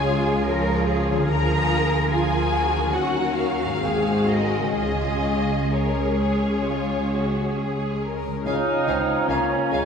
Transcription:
Already playing: double bass section C#2, harp C#3 G#3 F4 G#4, viola section F4, violin section F4 C#5 G#5, cello section G#4
0.09 viola section G#3
0.48 viola section F3 G#4, violin section F4 C#5, cello section A#4
0.87 cello section G#4
1.10 harp D3
1.14 harp A#3
1.19 harp F4
1.23 harp G#4
1.27 double bass section D2, viola section F3 F4, violin section G#4 A#4 A#5, cello section A#4
2.11 viola section F3 F4, cello section F4, violin section G#4 A#4 G#5
2.53 cello section F#4
2.76 harp D#3
2.81 harp A#3
2.85 harp C#4
2.90 harp F#4
2.94 double bass section D#2, viola section F#3 C#4, violin section F#4 A#4 F#5
3.37 violin section F5
3.65 harp G#2
3.69 harp G#3
3.73 harp C4
3.78 viola section G#3, harp F#4
3.82 double bass section G#1, viola section C4, violin section F#4 G#4, cello section G#4
4.29 cello section A#4, violin section D#5
4.58 harp C#3
4.62 harp G#3
4.67 harp C#4
4.72 harp F4, violin section D#5
4.76 double bass section C#2, viola section G#3 C#4, violin section F4 G#4, cello section G#4
5.71 viola section G#3 C#4, violin section A#4 C#5
6.21 violin section G#4
6.66 violin section F4
7.12 violin section F#4
7.56 violin section G#4
8.03 violin section A#4
8.27 harp C#3
8.32 harp G#3
8.37 harp C#4
8.41 harp F4
8.46 double bass section C#2, cello section C#3, french horn section C#4 F4, bassoon C#4, viola section D#4, clarinet C#5, violin section C#5 F5 G#5, oboe F5, flute section A#5
8.87 double bass section C#2, cello section C#3, bassoon C4, violin section C#5 F5 G#5
9.28 double bass section C#2, cello section C#3, bassoon A#3, viola section C#4, violin section C#5 F5 G#5, oboe G#5
9.72 double bass section C#2, cello section C#3, bassoon G#3, violin section C#5 F5 G#5

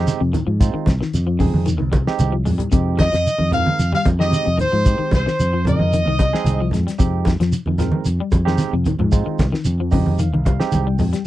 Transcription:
Already playing: clean electric guitar D#3, tine electric piano G#3 C4 D#4 G4
0.07 closed hi-hat, high conga, shekere
0.20 fingered electric bass F2, clean electric guitar C3
0.33 clean electric guitar D#3, closed hi-hat, high conga, low conga, shekere
0.47 fingered electric bass G#2, clean electric guitar F3
0.60 tine electric piano G#3 C4 D#4 F4, kick, closed hi-hat, shekere
0.74 clean electric guitar D#3, muted fingered electric bass stroke
0.86 fingered electric bass C2, kick, snare, closed hi-hat, high conga, shekere
1.01 clean electric guitar D#3, snare
1.13 fingered electric bass F2, snare, closed hi-hat, shekere
1.27 clean electric guitar F3
1.39 clean electric guitar C#3, tine electric piano G#3 C4 D#4 G#4, kick, open hi-hat, low conga, shekere
1.54 fingered electric bass F2, high conga
1.66 clean electric guitar D#3, closed hi-hat, shekere
1.78 fingered electric bass C2, clean electric guitar D#3, high conga
1.92 clean electric guitar G3, kick, closed hi-hat, high conga, shekere
2.06 tine electric piano G#3 C4 D#4 G4, muted fingered electric bass stroke, snare
2.19 fingered electric bass C2, closed hi-hat, high conga, shekere
2.32 clean electric guitar F3
2.45 fingered electric bass F2, clean electric guitar G#3, open hi-hat, low conga, shekere
2.58 clean electric guitar G3, closed hi-hat, low conga
2.72 fingered electric bass F2, clean electric guitar C3, tine electric piano G#3 C4 D#4 G4, kick, closed hi-hat, shekere
2.97 clean electric guitar D#3, horn section D#5, kick, snare, closed hi-hat, high conga, shekere
3.12 fingered electric bass F2, clean electric guitar F3, snare, closed hi-hat
3.26 closed hi-hat, shekere
3.38 fingered electric bass F2, clean electric guitar D#3, high conga
3.52 clean electric guitar F3, tine electric piano G#3 C4 D#4 A#4, horn section F5, closed hi-hat, low conga, shekere
3.66 high conga
3.79 fingered electric bass F2, closed hi-hat, shekere
3.92 clean electric guitar G3, horn section F5, snare, high conga
4.05 fingered electric bass F2, kick, closed hi-hat, high conga, shekere
4.19 clean electric guitar D#3, tine electric piano G#3 C4 D#4 G4, horn section D#5, snare
4.32 snare, closed hi-hat, high conga, shekere
4.45 fingered electric bass F2, clean electric guitar C3
4.58 clean electric guitar D#3, horn section C5, closed hi-hat, low conga, shekere
4.72 fingered electric bass G#2, clean electric guitar F3
4.86 tine electric piano G#3 C4 D#4 G4, kick, closed hi-hat, shekere
4.98 clean electric guitar D#3, muted fingered electric bass stroke
5.11 fingered electric bass C2, horn section C5, kick, snare, closed hi-hat, high conga, shekere
5.26 clean electric guitar D#3, snare
5.40 fingered electric bass F2, closed hi-hat, shekere
5.53 clean electric guitar F3
5.65 clean electric guitar C#3, tine electric piano G#3 C4 D#4 A#4, horn section D#5, closed hi-hat, low conga, shekere
5.79 fingered electric bass F2, high conga
5.93 clean electric guitar D#3, closed hi-hat, shekere
6.05 fingered electric bass C2, clean electric guitar D#3, high conga
6.19 clean electric guitar G3, kick, closed hi-hat, high conga, shekere
6.33 tine electric piano G#3 C4 D#4 G#4, snare
6.44 fingered electric bass C2, closed hi-hat, high conga, shekere
6.61 clean electric guitar F3
6.71 fingered electric bass F2, clean electric guitar G#3, snare, closed hi-hat, low conga, shekere
6.87 clean electric guitar G3, snare, closed hi-hat
6.99 fingered electric bass F2, clean electric guitar C3, tine electric piano G#3 C4 D#4 G4, kick, closed hi-hat, shekere
7.25 clean electric guitar D#3, kick, snare, closed hi-hat, high conga, shekere
7.40 fingered electric bass F2, clean electric guitar F3, snare, closed hi-hat
7.52 closed hi-hat, shekere
7.66 fingered electric bass F2, clean electric guitar D#3, high conga
7.78 clean electric guitar F3, tine electric piano G#3 C4 D#4 A#4, snare, closed hi-hat, low conga, shekere
7.92 high conga
8.05 fingered electric bass F2, closed hi-hat, shekere
8.20 clean electric guitar G3
8.32 fingered electric bass F2, kick, closed hi-hat, high conga, shekere
8.45 clean electric guitar D#3, tine electric piano G#3 C4 D#4 G4, snare
8.58 snare, closed hi-hat, high conga, shekere
8.73 fingered electric bass F2, clean electric guitar C3
8.86 clean electric guitar D#3, closed hi-hat, high conga, low conga, shekere
8.99 fingered electric bass G#2, clean electric guitar F3, low conga
9.12 tine electric piano G#3 C4 D#4 F4, kick, closed hi-hat, shekere
9.26 clean electric guitar D#3, muted fingered electric bass stroke
9.39 fingered electric bass C2, kick, snare, closed hi-hat, high conga, shekere
9.52 clean electric guitar D#3, snare
9.65 fingered electric bass F2, closed hi-hat, shekere
9.80 clean electric guitar F3
9.91 clean electric guitar C#3, tine electric piano G#3 C4 D#4 G4 D#5, kick, open hi-hat, low conga, shekere
10.06 fingered electric bass F2, high conga
10.18 clean electric guitar D#3, tine electric piano F5, closed hi-hat, shekere
10.33 fingered electric bass C2, clean electric guitar D#3, high conga
10.45 clean electric guitar G3, tine electric piano F5, kick, closed hi-hat, high conga, shekere
10.59 tine electric piano G#3 C4 D#4 G4, snare
10.72 fingered electric bass C2, tine electric piano G5, closed hi-hat, high conga, shekere
10.87 clean electric guitar G3
10.99 fingered electric bass F2, clean electric guitar G#3, open hi-hat, low conga, shekere
11.13 clean electric guitar G3, snare, closed hi-hat

